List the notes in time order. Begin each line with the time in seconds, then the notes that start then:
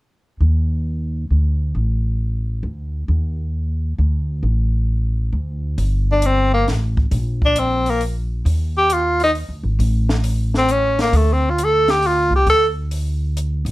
0.41 D#2
1.31 D2
1.75 A1
2.63 D2
3.08 D#2
3.99 D2
4.43 A1
5.33 D2
5.78 G1, kick, open hi-hat
6.12 D4
6.22 C4, closed hi-hat
6.54 A#3
6.67 A1, snare, open hi-hat
6.97 kick
7.11 A#1, kick, open hi-hat
7.42 D4, kick
7.56 C4, closed hi-hat
7.86 A#3, open hi-hat
8.01 open hi-hat
8.45 D#2, kick, open hi-hat
8.78 G4
8.90 F4, closed hi-hat
9.20 D#4, open hi-hat
9.35 open hi-hat
9.49 D2
9.63 G#1
9.79 A1, kick, open hi-hat
10.09 snare
10.24 open hi-hat
10.54 C4, snare
10.69 C#4, closed hi-hat
10.99 A#3, snare, open hi-hat
11.12 D2, kick, open hi-hat
11.16 A3
11.33 C4
11.50 F4
11.58 closed hi-hat
11.64 A4
11.88 G4, snare, open hi-hat
12.02 open hi-hat
12.07 F4
12.30 C2
12.36 G4
12.46 D2 A4, kick, open hi-hat
12.91 open hi-hat
13.37 closed hi-hat
13.65 A1, open hi-hat